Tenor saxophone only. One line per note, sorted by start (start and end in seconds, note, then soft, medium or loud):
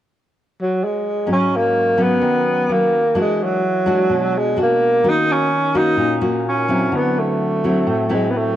0.62 0.86 F#3 medium
0.84 1.29 G#3 medium
1.32 1.57 C#4 medium
1.56 2.03 A#3 medium
2.02 2.73 B3 medium
2.72 3.17 A#3 medium
3.21 3.45 G#3 medium
3.43 4.39 F#3 medium
4.38 4.59 G#3 medium
4.62 5.11 A#3 medium
5.09 5.33 D#4 medium
5.32 5.78 C#4 medium
5.77 6.20 D#4 medium
6.48 6.97 C#4 medium
6.96 7.21 B3 medium
7.19 8.12 A3 medium
8.14 8.32 G#3 medium
8.30 8.39 B3 medium
8.37 8.56 A3 medium